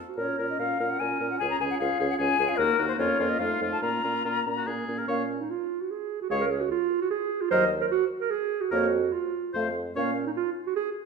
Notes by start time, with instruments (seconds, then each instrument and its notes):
0.08 clarinet F#4
0.17 bassoon A#2, french horn C#4, clarinet F4, oboe A#4, flute C#5
0.38 bassoon A#2, french horn C#4, clarinet F4, oboe A#4
0.50 flute D#5
0.59 bassoon A#2, french horn C#4, clarinet F4, oboe A#4, flute F5
0.80 bassoon A#2, french horn C#4, clarinet F4, oboe A#4
0.90 flute F#5
0.99 bassoon A#2, french horn C#4, clarinet F4, oboe A#4, flute G#5
1.20 bassoon A#2, french horn C#4, clarinet F4, oboe A#4
1.30 flute F#5
1.39 bassoon C#2, french horn C#4, clarinet F4, oboe G#4, flute G#5
1.50 flute A#5
1.60 bassoon C#2, french horn C#4, clarinet F4, oboe G#4, flute G#5
1.71 flute F#5
1.79 bassoon C#2, french horn C#4, clarinet F4, oboe G#4, flute F5
2.00 bassoon C#2, french horn C#4, clarinet F4, oboe G#4
2.10 flute F#5
2.18 bassoon C#2, french horn C#4, clarinet F4, oboe G#4, flute G#5
2.38 bassoon C#2, french horn C#4, clarinet F4, oboe G#4
2.49 flute F5
2.57 bassoon D#2, french horn A#3, clarinet D#4, oboe F#4, flute A#4
2.78 bassoon D#2, french horn A#3, clarinet D#4, oboe F#4
2.88 flute C5
2.98 bassoon F2, french horn A#3, clarinet C#4, oboe F4, flute C#5
3.18 bassoon F2, french horn A#3, clarinet C#4, oboe F4
3.29 flute D#5
3.39 bassoon F2, french horn A3, clarinet D#4, oboe F4, flute F5
3.60 bassoon F2, french horn A3, clarinet D#4, oboe F4
3.72 flute A5
3.82 bassoon A#2, french horn A#3, clarinet C#4, oboe F4, flute A#5
4.03 bassoon A#2, french horn A#3, clarinet C#4, oboe F4
4.25 bassoon A#2, french horn A#3, clarinet C#4, oboe F4
4.46 bassoon A#2, french horn A#3, clarinet C#4
4.57 oboe F#4
4.67 bassoon A#2, french horn A#3, clarinet C#4, oboe G#4
4.88 bassoon A#2, french horn A#3, clarinet C#4
4.98 oboe A#4
5.08 bassoon A#2, french horn A#3, clarinet C#4, oboe C#5, flute F5
5.40 clarinet D#4
5.51 clarinet F4
5.81 clarinet F#4
5.91 clarinet G#4
6.21 clarinet F#4
6.30 bassoon C#2, french horn G#3, clarinet G#4, oboe C#5, flute F5
6.41 clarinet A#4
6.51 clarinet G#4
6.60 clarinet F#4
6.71 clarinet F4
7.01 clarinet F#4
7.10 clarinet G#4
7.41 clarinet F4
7.51 bassoon D#2, french horn F#3, oboe A#4, clarinet C5, flute D#5
7.81 clarinet A#4
7.91 clarinet F#4
8.21 clarinet A#4
8.30 clarinet G#4
8.61 clarinet F#4
8.71 bassoon F2, french horn A#3, clarinet F#4, oboe A#4, flute C#5
9.12 clarinet F4
9.53 bassoon F2, french horn A3, oboe C5, flute F5
9.96 bassoon A#2, french horn A#3, clarinet C#4, oboe C#5, flute F5
10.27 clarinet D#4
10.37 clarinet F4
10.67 clarinet F#4
10.76 clarinet G#4